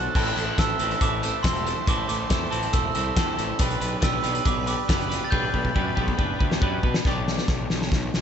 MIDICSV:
0, 0, Header, 1, 6, 480
1, 0, Start_track
1, 0, Key_signature, 1, "major"
1, 0, Tempo, 431655
1, 168, Time_signature, 4, 2, 24, 8
1, 9131, End_track
2, 0, Start_track
2, 0, Title_t, "Glockenspiel"
2, 0, Program_c, 0, 9
2, 657, Note_on_c, 0, 88, 108
2, 1129, Note_on_c, 0, 86, 89
2, 1145, Note_off_c, 0, 88, 0
2, 1587, Note_on_c, 0, 84, 86
2, 1621, Note_off_c, 0, 86, 0
2, 2090, Note_off_c, 0, 84, 0
2, 2096, Note_on_c, 0, 86, 103
2, 2309, Note_off_c, 0, 86, 0
2, 2322, Note_on_c, 0, 86, 88
2, 3036, Note_on_c, 0, 88, 88
2, 3063, Note_off_c, 0, 86, 0
2, 3484, Note_off_c, 0, 88, 0
2, 4491, Note_on_c, 0, 88, 83
2, 4932, Note_off_c, 0, 88, 0
2, 4969, Note_on_c, 0, 86, 80
2, 5187, Note_off_c, 0, 86, 0
2, 5204, Note_on_c, 0, 86, 96
2, 5833, Note_on_c, 0, 93, 79
2, 5863, Note_off_c, 0, 86, 0
2, 5900, Note_on_c, 0, 91, 101
2, 5915, Note_off_c, 0, 93, 0
2, 7307, Note_off_c, 0, 91, 0
2, 9131, End_track
3, 0, Start_track
3, 0, Title_t, "String machine"
3, 0, Program_c, 1, 50
3, 0, Note_on_c, 1, 66, 69
3, 0, Note_on_c, 1, 69, 73
3, 0, Note_on_c, 1, 72, 65
3, 0, Note_on_c, 1, 81, 80
3, 117, Note_off_c, 1, 81, 0
3, 125, Note_off_c, 1, 66, 0
3, 131, Note_off_c, 1, 72, 0
3, 176, Note_on_c, 1, 76, 60
3, 177, Note_on_c, 1, 72, 71
3, 183, Note_on_c, 1, 84, 77
3, 3957, Note_off_c, 1, 69, 0
3, 3966, Note_off_c, 1, 76, 0
3, 3967, Note_off_c, 1, 72, 0
3, 3970, Note_off_c, 1, 84, 0
3, 3986, Note_on_c, 1, 71, 69
3, 3990, Note_on_c, 1, 67, 79
3, 3993, Note_on_c, 1, 74, 75
3, 3998, Note_on_c, 1, 83, 79
3, 7797, Note_off_c, 1, 71, 0
3, 7799, Note_off_c, 1, 67, 0
3, 7801, Note_off_c, 1, 74, 0
3, 7803, Note_off_c, 1, 83, 0
3, 9131, End_track
4, 0, Start_track
4, 0, Title_t, "Overdriven electric guitar"
4, 0, Program_c, 2, 29
4, 0, Note_on_c, 2, 50, 88
4, 0, Note_on_c, 2, 62, 58
4, 0, Note_on_c, 2, 66, 72
4, 0, Note_on_c, 2, 69, 77
4, 150, Note_off_c, 2, 50, 0
4, 155, Note_off_c, 2, 66, 0
4, 160, Note_on_c, 2, 45, 86
4, 161, Note_off_c, 2, 62, 0
4, 168, Note_on_c, 2, 52, 94
4, 168, Note_on_c, 2, 57, 91
4, 172, Note_on_c, 2, 60, 110
4, 176, Note_on_c, 2, 64, 99
4, 177, Note_off_c, 2, 69, 0
4, 181, Note_on_c, 2, 69, 104
4, 400, Note_off_c, 2, 69, 0
4, 405, Note_on_c, 2, 69, 74
4, 411, Note_off_c, 2, 64, 0
4, 416, Note_on_c, 2, 64, 66
4, 420, Note_off_c, 2, 60, 0
4, 424, Note_on_c, 2, 60, 65
4, 429, Note_off_c, 2, 57, 0
4, 433, Note_on_c, 2, 57, 56
4, 640, Note_off_c, 2, 57, 0
4, 645, Note_on_c, 2, 57, 86
4, 648, Note_off_c, 2, 60, 0
4, 652, Note_on_c, 2, 60, 90
4, 656, Note_off_c, 2, 64, 0
4, 659, Note_off_c, 2, 69, 0
4, 660, Note_on_c, 2, 64, 91
4, 664, Note_on_c, 2, 69, 97
4, 883, Note_off_c, 2, 69, 0
4, 888, Note_on_c, 2, 69, 89
4, 890, Note_off_c, 2, 64, 0
4, 895, Note_on_c, 2, 64, 88
4, 896, Note_off_c, 2, 60, 0
4, 900, Note_on_c, 2, 60, 85
4, 903, Note_off_c, 2, 57, 0
4, 905, Note_off_c, 2, 52, 0
4, 906, Note_off_c, 2, 45, 0
4, 907, Note_on_c, 2, 57, 83
4, 909, Note_on_c, 2, 52, 73
4, 910, Note_on_c, 2, 45, 68
4, 1104, Note_off_c, 2, 57, 0
4, 1117, Note_off_c, 2, 60, 0
4, 1117, Note_on_c, 2, 57, 70
4, 1121, Note_off_c, 2, 64, 0
4, 1126, Note_off_c, 2, 69, 0
4, 1131, Note_on_c, 2, 60, 64
4, 1134, Note_on_c, 2, 64, 84
4, 1140, Note_on_c, 2, 69, 78
4, 1351, Note_off_c, 2, 69, 0
4, 1358, Note_off_c, 2, 64, 0
4, 1364, Note_on_c, 2, 69, 73
4, 1369, Note_off_c, 2, 60, 0
4, 1372, Note_on_c, 2, 64, 69
4, 1376, Note_off_c, 2, 57, 0
4, 1377, Note_off_c, 2, 45, 0
4, 1377, Note_off_c, 2, 52, 0
4, 1383, Note_on_c, 2, 60, 58
4, 1389, Note_on_c, 2, 57, 61
4, 1599, Note_off_c, 2, 57, 0
4, 1599, Note_on_c, 2, 45, 81
4, 1601, Note_off_c, 2, 60, 0
4, 1605, Note_on_c, 2, 52, 91
4, 1607, Note_off_c, 2, 64, 0
4, 1610, Note_off_c, 2, 69, 0
4, 1612, Note_on_c, 2, 57, 93
4, 1614, Note_on_c, 2, 60, 107
4, 1620, Note_on_c, 2, 64, 88
4, 1623, Note_on_c, 2, 69, 100
4, 1833, Note_off_c, 2, 69, 0
4, 1840, Note_off_c, 2, 64, 0
4, 1847, Note_on_c, 2, 69, 80
4, 1848, Note_off_c, 2, 60, 0
4, 1854, Note_on_c, 2, 64, 68
4, 1857, Note_off_c, 2, 57, 0
4, 1862, Note_on_c, 2, 60, 65
4, 1870, Note_on_c, 2, 57, 60
4, 2068, Note_off_c, 2, 45, 0
4, 2075, Note_off_c, 2, 52, 0
4, 2080, Note_off_c, 2, 57, 0
4, 2081, Note_on_c, 2, 45, 96
4, 2086, Note_off_c, 2, 60, 0
4, 2088, Note_on_c, 2, 52, 94
4, 2090, Note_off_c, 2, 64, 0
4, 2094, Note_on_c, 2, 57, 105
4, 2095, Note_off_c, 2, 69, 0
4, 2099, Note_on_c, 2, 60, 96
4, 2104, Note_on_c, 2, 64, 91
4, 2108, Note_on_c, 2, 69, 104
4, 2301, Note_off_c, 2, 69, 0
4, 2307, Note_off_c, 2, 64, 0
4, 2314, Note_on_c, 2, 69, 69
4, 2317, Note_off_c, 2, 60, 0
4, 2320, Note_on_c, 2, 64, 71
4, 2327, Note_off_c, 2, 57, 0
4, 2330, Note_on_c, 2, 60, 56
4, 2340, Note_on_c, 2, 57, 65
4, 2538, Note_off_c, 2, 57, 0
4, 2549, Note_off_c, 2, 60, 0
4, 2552, Note_on_c, 2, 57, 84
4, 2556, Note_off_c, 2, 64, 0
4, 2562, Note_off_c, 2, 45, 0
4, 2563, Note_on_c, 2, 60, 75
4, 2565, Note_off_c, 2, 52, 0
4, 2567, Note_off_c, 2, 69, 0
4, 2569, Note_on_c, 2, 64, 88
4, 2580, Note_on_c, 2, 69, 93
4, 2776, Note_off_c, 2, 69, 0
4, 2779, Note_off_c, 2, 64, 0
4, 2785, Note_off_c, 2, 60, 0
4, 2790, Note_on_c, 2, 69, 91
4, 2791, Note_off_c, 2, 57, 0
4, 2793, Note_on_c, 2, 64, 76
4, 2798, Note_on_c, 2, 60, 88
4, 2804, Note_on_c, 2, 57, 81
4, 2807, Note_on_c, 2, 52, 71
4, 2808, Note_on_c, 2, 45, 70
4, 3022, Note_off_c, 2, 57, 0
4, 3029, Note_off_c, 2, 60, 0
4, 3034, Note_off_c, 2, 64, 0
4, 3036, Note_on_c, 2, 57, 74
4, 3040, Note_off_c, 2, 69, 0
4, 3042, Note_on_c, 2, 60, 75
4, 3048, Note_on_c, 2, 64, 67
4, 3054, Note_on_c, 2, 69, 73
4, 3264, Note_off_c, 2, 69, 0
4, 3273, Note_off_c, 2, 64, 0
4, 3277, Note_on_c, 2, 69, 72
4, 3282, Note_off_c, 2, 60, 0
4, 3284, Note_off_c, 2, 52, 0
4, 3284, Note_off_c, 2, 57, 0
4, 3285, Note_off_c, 2, 45, 0
4, 3287, Note_on_c, 2, 64, 76
4, 3295, Note_on_c, 2, 60, 73
4, 3297, Note_on_c, 2, 57, 61
4, 3508, Note_off_c, 2, 57, 0
4, 3514, Note_on_c, 2, 45, 97
4, 3515, Note_off_c, 2, 60, 0
4, 3515, Note_off_c, 2, 64, 0
4, 3515, Note_on_c, 2, 52, 104
4, 3520, Note_off_c, 2, 69, 0
4, 3521, Note_on_c, 2, 57, 94
4, 3528, Note_on_c, 2, 64, 89
4, 3529, Note_on_c, 2, 60, 98
4, 3533, Note_on_c, 2, 69, 105
4, 3737, Note_off_c, 2, 69, 0
4, 3741, Note_off_c, 2, 64, 0
4, 3750, Note_on_c, 2, 69, 71
4, 3754, Note_on_c, 2, 64, 73
4, 3755, Note_off_c, 2, 60, 0
4, 3759, Note_off_c, 2, 57, 0
4, 3768, Note_on_c, 2, 60, 65
4, 3772, Note_on_c, 2, 57, 60
4, 3981, Note_off_c, 2, 69, 0
4, 3982, Note_off_c, 2, 45, 0
4, 3983, Note_off_c, 2, 52, 0
4, 3983, Note_off_c, 2, 64, 0
4, 3987, Note_off_c, 2, 57, 0
4, 3990, Note_off_c, 2, 60, 0
4, 3992, Note_on_c, 2, 59, 103
4, 4002, Note_on_c, 2, 62, 89
4, 4011, Note_on_c, 2, 67, 90
4, 4016, Note_on_c, 2, 71, 107
4, 4227, Note_off_c, 2, 71, 0
4, 4231, Note_on_c, 2, 71, 76
4, 4241, Note_off_c, 2, 67, 0
4, 4246, Note_on_c, 2, 67, 70
4, 4250, Note_off_c, 2, 62, 0
4, 4255, Note_on_c, 2, 62, 55
4, 4458, Note_off_c, 2, 59, 0
4, 4462, Note_on_c, 2, 59, 80
4, 4467, Note_off_c, 2, 62, 0
4, 4472, Note_on_c, 2, 62, 82
4, 4473, Note_off_c, 2, 67, 0
4, 4477, Note_on_c, 2, 67, 92
4, 4485, Note_off_c, 2, 71, 0
4, 4489, Note_on_c, 2, 71, 87
4, 4697, Note_off_c, 2, 71, 0
4, 4701, Note_on_c, 2, 71, 98
4, 4705, Note_off_c, 2, 67, 0
4, 4709, Note_on_c, 2, 67, 83
4, 4716, Note_off_c, 2, 62, 0
4, 4720, Note_on_c, 2, 62, 84
4, 4721, Note_off_c, 2, 59, 0
4, 4726, Note_on_c, 2, 59, 80
4, 4941, Note_off_c, 2, 59, 0
4, 4946, Note_on_c, 2, 59, 69
4, 4949, Note_off_c, 2, 62, 0
4, 4953, Note_on_c, 2, 62, 76
4, 4957, Note_off_c, 2, 67, 0
4, 4961, Note_on_c, 2, 67, 77
4, 4965, Note_off_c, 2, 71, 0
4, 4970, Note_on_c, 2, 71, 73
4, 5183, Note_off_c, 2, 71, 0
4, 5188, Note_on_c, 2, 71, 76
4, 5194, Note_off_c, 2, 67, 0
4, 5199, Note_on_c, 2, 67, 68
4, 5205, Note_off_c, 2, 62, 0
4, 5210, Note_on_c, 2, 62, 59
4, 5422, Note_off_c, 2, 59, 0
4, 5426, Note_on_c, 2, 59, 77
4, 5433, Note_off_c, 2, 62, 0
4, 5437, Note_off_c, 2, 67, 0
4, 5437, Note_on_c, 2, 62, 85
4, 5442, Note_on_c, 2, 67, 89
4, 5448, Note_off_c, 2, 71, 0
4, 5452, Note_on_c, 2, 71, 108
4, 5662, Note_off_c, 2, 71, 0
4, 5666, Note_on_c, 2, 71, 77
4, 5673, Note_off_c, 2, 67, 0
4, 5677, Note_on_c, 2, 67, 70
4, 5683, Note_off_c, 2, 62, 0
4, 5687, Note_on_c, 2, 62, 61
4, 5898, Note_off_c, 2, 62, 0
4, 5899, Note_off_c, 2, 59, 0
4, 5903, Note_on_c, 2, 59, 94
4, 5904, Note_off_c, 2, 67, 0
4, 5910, Note_off_c, 2, 71, 0
4, 5911, Note_on_c, 2, 62, 99
4, 5918, Note_on_c, 2, 67, 99
4, 5923, Note_on_c, 2, 71, 100
4, 6146, Note_off_c, 2, 71, 0
4, 6156, Note_off_c, 2, 67, 0
4, 6159, Note_on_c, 2, 71, 71
4, 6168, Note_off_c, 2, 62, 0
4, 6170, Note_on_c, 2, 67, 70
4, 6181, Note_on_c, 2, 62, 60
4, 6377, Note_off_c, 2, 59, 0
4, 6385, Note_off_c, 2, 62, 0
4, 6389, Note_off_c, 2, 67, 0
4, 6390, Note_on_c, 2, 59, 83
4, 6395, Note_off_c, 2, 71, 0
4, 6398, Note_on_c, 2, 62, 82
4, 6403, Note_on_c, 2, 67, 84
4, 6409, Note_on_c, 2, 71, 89
4, 6612, Note_off_c, 2, 71, 0
4, 6617, Note_off_c, 2, 67, 0
4, 6625, Note_on_c, 2, 71, 89
4, 6628, Note_off_c, 2, 62, 0
4, 6631, Note_on_c, 2, 67, 85
4, 6635, Note_off_c, 2, 59, 0
4, 6642, Note_on_c, 2, 62, 78
4, 6648, Note_on_c, 2, 59, 72
4, 6852, Note_off_c, 2, 59, 0
4, 6859, Note_off_c, 2, 62, 0
4, 6863, Note_off_c, 2, 67, 0
4, 6865, Note_on_c, 2, 59, 78
4, 6872, Note_on_c, 2, 62, 79
4, 6873, Note_off_c, 2, 71, 0
4, 6877, Note_on_c, 2, 67, 73
4, 6886, Note_on_c, 2, 71, 80
4, 7090, Note_off_c, 2, 71, 0
4, 7103, Note_off_c, 2, 67, 0
4, 7104, Note_on_c, 2, 71, 79
4, 7115, Note_off_c, 2, 62, 0
4, 7116, Note_on_c, 2, 67, 70
4, 7128, Note_on_c, 2, 62, 54
4, 7337, Note_off_c, 2, 59, 0
4, 7348, Note_off_c, 2, 62, 0
4, 7350, Note_off_c, 2, 67, 0
4, 7350, Note_on_c, 2, 59, 88
4, 7357, Note_off_c, 2, 71, 0
4, 7362, Note_on_c, 2, 62, 97
4, 7364, Note_on_c, 2, 67, 94
4, 7371, Note_on_c, 2, 71, 94
4, 7584, Note_off_c, 2, 71, 0
4, 7597, Note_on_c, 2, 71, 71
4, 7599, Note_off_c, 2, 67, 0
4, 7608, Note_off_c, 2, 62, 0
4, 7612, Note_on_c, 2, 67, 70
4, 7621, Note_on_c, 2, 62, 54
4, 7823, Note_off_c, 2, 59, 0
4, 7826, Note_off_c, 2, 71, 0
4, 7833, Note_off_c, 2, 67, 0
4, 7838, Note_off_c, 2, 62, 0
4, 7845, Note_on_c, 2, 59, 76
4, 7852, Note_on_c, 2, 62, 85
4, 7866, Note_on_c, 2, 67, 94
4, 7869, Note_on_c, 2, 74, 107
4, 9131, Note_off_c, 2, 59, 0
4, 9131, Note_off_c, 2, 62, 0
4, 9131, Note_off_c, 2, 67, 0
4, 9131, Note_off_c, 2, 74, 0
4, 9131, End_track
5, 0, Start_track
5, 0, Title_t, "Picked electric bass"
5, 0, Program_c, 3, 34
5, 171, Note_on_c, 3, 33, 84
5, 328, Note_off_c, 3, 33, 0
5, 412, Note_on_c, 3, 33, 93
5, 568, Note_off_c, 3, 33, 0
5, 647, Note_on_c, 3, 33, 88
5, 805, Note_off_c, 3, 33, 0
5, 888, Note_on_c, 3, 33, 89
5, 1045, Note_off_c, 3, 33, 0
5, 1125, Note_on_c, 3, 33, 93
5, 1441, Note_off_c, 3, 33, 0
5, 1611, Note_on_c, 3, 28, 88
5, 1925, Note_off_c, 3, 28, 0
5, 2084, Note_on_c, 3, 33, 92
5, 2242, Note_off_c, 3, 33, 0
5, 2335, Note_on_c, 3, 33, 97
5, 2489, Note_off_c, 3, 33, 0
5, 2566, Note_on_c, 3, 40, 87
5, 2723, Note_off_c, 3, 40, 0
5, 2812, Note_on_c, 3, 33, 98
5, 2966, Note_off_c, 3, 33, 0
5, 3050, Note_on_c, 3, 28, 103
5, 3205, Note_off_c, 3, 28, 0
5, 3289, Note_on_c, 3, 36, 97
5, 3445, Note_off_c, 3, 36, 0
5, 3523, Note_on_c, 3, 40, 84
5, 3680, Note_off_c, 3, 40, 0
5, 3760, Note_on_c, 3, 33, 86
5, 3918, Note_off_c, 3, 33, 0
5, 4002, Note_on_c, 3, 35, 89
5, 4159, Note_off_c, 3, 35, 0
5, 4242, Note_on_c, 3, 35, 92
5, 4399, Note_off_c, 3, 35, 0
5, 4480, Note_on_c, 3, 35, 91
5, 4638, Note_off_c, 3, 35, 0
5, 4721, Note_on_c, 3, 35, 89
5, 4879, Note_off_c, 3, 35, 0
5, 4956, Note_on_c, 3, 35, 98
5, 5273, Note_off_c, 3, 35, 0
5, 5443, Note_on_c, 3, 30, 79
5, 5758, Note_off_c, 3, 30, 0
5, 5919, Note_on_c, 3, 35, 89
5, 6077, Note_off_c, 3, 35, 0
5, 6161, Note_on_c, 3, 35, 98
5, 6318, Note_off_c, 3, 35, 0
5, 6402, Note_on_c, 3, 42, 86
5, 6560, Note_off_c, 3, 42, 0
5, 6645, Note_on_c, 3, 35, 78
5, 6801, Note_off_c, 3, 35, 0
5, 6883, Note_on_c, 3, 30, 89
5, 7041, Note_off_c, 3, 30, 0
5, 7125, Note_on_c, 3, 38, 91
5, 7282, Note_off_c, 3, 38, 0
5, 7362, Note_on_c, 3, 42, 80
5, 7520, Note_off_c, 3, 42, 0
5, 7603, Note_on_c, 3, 47, 83
5, 7762, Note_off_c, 3, 47, 0
5, 7844, Note_on_c, 3, 35, 88
5, 8208, Note_off_c, 3, 35, 0
5, 8324, Note_on_c, 3, 35, 80
5, 8506, Note_off_c, 3, 35, 0
5, 8579, Note_on_c, 3, 35, 85
5, 8757, Note_off_c, 3, 35, 0
5, 8810, Note_on_c, 3, 35, 95
5, 8991, Note_off_c, 3, 35, 0
5, 9057, Note_on_c, 3, 35, 83
5, 9131, Note_off_c, 3, 35, 0
5, 9131, End_track
6, 0, Start_track
6, 0, Title_t, "Drums"
6, 168, Note_on_c, 9, 36, 120
6, 175, Note_on_c, 9, 49, 103
6, 280, Note_off_c, 9, 36, 0
6, 286, Note_off_c, 9, 49, 0
6, 301, Note_on_c, 9, 42, 44
6, 412, Note_off_c, 9, 42, 0
6, 418, Note_on_c, 9, 42, 70
6, 529, Note_off_c, 9, 42, 0
6, 646, Note_on_c, 9, 36, 113
6, 648, Note_on_c, 9, 42, 105
6, 655, Note_on_c, 9, 38, 108
6, 757, Note_off_c, 9, 36, 0
6, 759, Note_off_c, 9, 42, 0
6, 766, Note_off_c, 9, 38, 0
6, 883, Note_on_c, 9, 42, 78
6, 994, Note_off_c, 9, 42, 0
6, 1011, Note_on_c, 9, 42, 44
6, 1122, Note_off_c, 9, 42, 0
6, 1124, Note_on_c, 9, 36, 116
6, 1127, Note_on_c, 9, 42, 97
6, 1235, Note_off_c, 9, 36, 0
6, 1238, Note_off_c, 9, 42, 0
6, 1368, Note_on_c, 9, 42, 73
6, 1479, Note_off_c, 9, 42, 0
6, 1604, Note_on_c, 9, 36, 125
6, 1608, Note_on_c, 9, 42, 102
6, 1614, Note_on_c, 9, 38, 126
6, 1715, Note_off_c, 9, 36, 0
6, 1719, Note_off_c, 9, 42, 0
6, 1726, Note_off_c, 9, 38, 0
6, 1738, Note_on_c, 9, 42, 43
6, 1850, Note_off_c, 9, 42, 0
6, 1852, Note_on_c, 9, 42, 72
6, 1963, Note_off_c, 9, 42, 0
6, 2084, Note_on_c, 9, 36, 125
6, 2085, Note_on_c, 9, 42, 104
6, 2196, Note_off_c, 9, 36, 0
6, 2196, Note_off_c, 9, 42, 0
6, 2326, Note_on_c, 9, 42, 64
6, 2438, Note_off_c, 9, 42, 0
6, 2560, Note_on_c, 9, 42, 96
6, 2562, Note_on_c, 9, 36, 106
6, 2566, Note_on_c, 9, 38, 114
6, 2671, Note_off_c, 9, 42, 0
6, 2673, Note_off_c, 9, 36, 0
6, 2678, Note_off_c, 9, 38, 0
6, 2807, Note_on_c, 9, 42, 74
6, 2919, Note_off_c, 9, 42, 0
6, 2921, Note_on_c, 9, 42, 42
6, 3033, Note_off_c, 9, 42, 0
6, 3038, Note_on_c, 9, 42, 109
6, 3042, Note_on_c, 9, 36, 121
6, 3149, Note_off_c, 9, 42, 0
6, 3154, Note_off_c, 9, 36, 0
6, 3279, Note_on_c, 9, 42, 76
6, 3390, Note_off_c, 9, 42, 0
6, 3519, Note_on_c, 9, 42, 120
6, 3520, Note_on_c, 9, 36, 122
6, 3525, Note_on_c, 9, 38, 116
6, 3630, Note_off_c, 9, 42, 0
6, 3631, Note_off_c, 9, 36, 0
6, 3637, Note_off_c, 9, 38, 0
6, 3765, Note_on_c, 9, 42, 71
6, 3877, Note_off_c, 9, 42, 0
6, 3991, Note_on_c, 9, 42, 106
6, 3998, Note_on_c, 9, 36, 127
6, 4102, Note_off_c, 9, 42, 0
6, 4109, Note_off_c, 9, 36, 0
6, 4121, Note_on_c, 9, 42, 49
6, 4232, Note_off_c, 9, 42, 0
6, 4241, Note_on_c, 9, 42, 68
6, 4353, Note_off_c, 9, 42, 0
6, 4470, Note_on_c, 9, 42, 110
6, 4475, Note_on_c, 9, 36, 113
6, 4477, Note_on_c, 9, 38, 110
6, 4581, Note_off_c, 9, 42, 0
6, 4586, Note_off_c, 9, 36, 0
6, 4588, Note_off_c, 9, 38, 0
6, 4711, Note_on_c, 9, 42, 77
6, 4822, Note_off_c, 9, 42, 0
6, 4837, Note_on_c, 9, 42, 46
6, 4948, Note_off_c, 9, 42, 0
6, 4952, Note_on_c, 9, 42, 100
6, 4955, Note_on_c, 9, 36, 115
6, 5063, Note_off_c, 9, 42, 0
6, 5066, Note_off_c, 9, 36, 0
6, 5196, Note_on_c, 9, 42, 71
6, 5307, Note_off_c, 9, 42, 0
6, 5439, Note_on_c, 9, 36, 122
6, 5440, Note_on_c, 9, 42, 100
6, 5447, Note_on_c, 9, 38, 119
6, 5550, Note_off_c, 9, 36, 0
6, 5551, Note_off_c, 9, 42, 0
6, 5558, Note_off_c, 9, 38, 0
6, 5568, Note_on_c, 9, 42, 45
6, 5680, Note_off_c, 9, 42, 0
6, 5689, Note_on_c, 9, 42, 76
6, 5695, Note_on_c, 9, 38, 32
6, 5800, Note_off_c, 9, 42, 0
6, 5807, Note_off_c, 9, 38, 0
6, 5919, Note_on_c, 9, 36, 117
6, 6030, Note_off_c, 9, 36, 0
6, 6159, Note_on_c, 9, 36, 76
6, 6270, Note_off_c, 9, 36, 0
6, 6280, Note_on_c, 9, 36, 63
6, 6391, Note_off_c, 9, 36, 0
6, 6402, Note_on_c, 9, 36, 99
6, 6513, Note_off_c, 9, 36, 0
6, 6640, Note_on_c, 9, 36, 84
6, 6751, Note_off_c, 9, 36, 0
6, 6760, Note_on_c, 9, 36, 69
6, 6871, Note_off_c, 9, 36, 0
6, 6880, Note_on_c, 9, 36, 97
6, 6991, Note_off_c, 9, 36, 0
6, 7122, Note_on_c, 9, 36, 98
6, 7233, Note_off_c, 9, 36, 0
6, 7245, Note_on_c, 9, 38, 85
6, 7356, Note_off_c, 9, 38, 0
6, 7359, Note_on_c, 9, 36, 116
6, 7470, Note_off_c, 9, 36, 0
6, 7598, Note_on_c, 9, 36, 93
6, 7709, Note_off_c, 9, 36, 0
6, 7721, Note_on_c, 9, 38, 96
6, 7832, Note_off_c, 9, 38, 0
6, 7840, Note_on_c, 9, 36, 117
6, 7842, Note_on_c, 9, 38, 58
6, 7951, Note_off_c, 9, 36, 0
6, 7953, Note_off_c, 9, 38, 0
6, 8092, Note_on_c, 9, 38, 59
6, 8203, Note_off_c, 9, 38, 0
6, 8204, Note_on_c, 9, 38, 58
6, 8316, Note_off_c, 9, 38, 0
6, 8320, Note_on_c, 9, 36, 106
6, 8320, Note_on_c, 9, 38, 67
6, 8431, Note_off_c, 9, 36, 0
6, 8431, Note_off_c, 9, 38, 0
6, 8564, Note_on_c, 9, 38, 81
6, 8675, Note_off_c, 9, 38, 0
6, 8695, Note_on_c, 9, 38, 60
6, 8804, Note_on_c, 9, 36, 111
6, 8806, Note_off_c, 9, 38, 0
6, 8813, Note_on_c, 9, 38, 86
6, 8915, Note_off_c, 9, 36, 0
6, 8924, Note_off_c, 9, 38, 0
6, 9051, Note_on_c, 9, 38, 84
6, 9131, Note_off_c, 9, 38, 0
6, 9131, End_track
0, 0, End_of_file